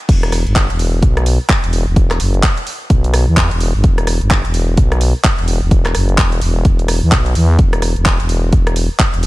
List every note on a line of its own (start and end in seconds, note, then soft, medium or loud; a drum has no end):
0.09 0.44 E1 medium
0.09 kick loud
0.09 closed hi-hat medium
0.09 crash medium
0.23 cross-stick medium
0.23 closed hi-hat medium
0.32 cross-stick medium
0.32 open hi-hat loud
0.47 0.68 G1 loud
0.56 kick loud
0.56 clap loud
0.56 closed hi-hat medium
0.70 1.01 E1 medium
0.70 closed hi-hat medium
0.79 open hi-hat loud
1.02 1.38 B1 medium
1.02 kick loud
1.02 closed hi-hat medium
1.17 cross-stick medium
1.17 closed hi-hat medium
1.26 open hi-hat loud
1.49 kick loud
1.49 clap loud
1.49 closed hi-hat medium
1.64 1.85 E1 loud
1.64 closed hi-hat medium
1.73 open hi-hat loud
1.87 2.18 E1 medium
1.96 kick loud
1.96 closed hi-hat medium
2.11 cross-stick medium
2.11 clap soft
2.11 closed hi-hat medium
2.20 2.42 F#1 medium
2.20 open hi-hat loud
2.34 closed hi-hat soft
2.43 kick loud
2.43 clap loud
2.43 closed hi-hat medium
2.57 closed hi-hat medium
2.67 open hi-hat loud
2.90 3.25 B1 medium
2.90 kick loud
2.90 closed hi-hat medium
3.04 closed hi-hat medium
3.14 cross-stick medium
3.14 open hi-hat loud
3.28 3.49 E2 loud
3.37 kick loud
3.37 clap loud
3.37 closed hi-hat medium
3.51 3.72 E1 loud
3.51 closed hi-hat medium
3.60 open hi-hat loud
3.75 3.82 G1 loud
3.84 4.19 E1 medium
3.84 kick loud
3.84 closed hi-hat medium
3.98 cross-stick medium
3.98 closed hi-hat medium
4.07 cross-stick medium
4.07 open hi-hat loud
4.21 4.43 G1 medium
4.21 closed hi-hat soft
4.31 kick loud
4.31 clap loud
4.31 closed hi-hat medium
4.45 4.76 E1 medium
4.45 closed hi-hat medium
4.54 open hi-hat loud
4.77 5.13 B1 medium
4.77 kick loud
4.77 closed hi-hat medium
4.92 cross-stick medium
4.92 closed hi-hat soft
5.01 open hi-hat loud
5.24 kick loud
5.24 clap loud
5.24 closed hi-hat medium
5.39 5.60 E1 loud
5.39 closed hi-hat medium
5.48 open hi-hat loud
5.62 5.93 E1 medium
5.71 kick loud
5.71 closed hi-hat medium
5.85 cross-stick medium
5.85 clap soft
5.85 closed hi-hat soft
5.95 6.17 F#1 loud
5.95 cross-stick medium
5.95 open hi-hat loud
6.09 closed hi-hat soft
6.18 6.40 E1 loud
6.18 kick loud
6.18 clap loud
6.18 closed hi-hat medium
6.32 closed hi-hat soft
6.41 6.64 E1 loud
6.41 open hi-hat loud
6.65 7.00 E1 medium
6.65 kick loud
6.65 closed hi-hat medium
6.79 closed hi-hat soft
6.88 cross-stick medium
6.88 open hi-hat loud
7.03 7.11 E2 loud
7.12 7.34 B1 loud
7.12 kick loud
7.12 clap loud
7.12 closed hi-hat medium
7.26 closed hi-hat medium
7.35 7.57 E2 loud
7.35 open hi-hat loud
7.59 7.94 E1 medium
7.59 kick loud
7.59 closed hi-hat medium
7.73 cross-stick medium
7.73 closed hi-hat soft
7.82 cross-stick medium
7.82 open hi-hat loud
7.96 8.18 E1 medium
7.96 closed hi-hat soft
8.06 kick loud
8.06 clap loud
8.06 closed hi-hat medium
8.20 8.51 E1 loud
8.20 closed hi-hat medium
8.29 open hi-hat loud
8.53 8.88 E1 loud
8.53 kick loud
8.53 closed hi-hat medium
8.67 cross-stick medium
8.67 closed hi-hat soft
8.76 open hi-hat loud
8.99 kick loud
8.99 clap loud
8.99 closed hi-hat medium
9.14 9.27 E1 loud
9.14 closed hi-hat medium
9.23 open hi-hat loud